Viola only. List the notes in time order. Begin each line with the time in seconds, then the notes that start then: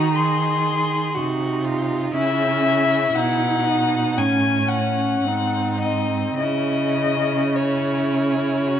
Already playing: D#4
1.15 D#4
2.14 C#4
3.15 E4
3.65 D#4
4.18 C#4
5.25 C4
5.82 C4
6.40 C#4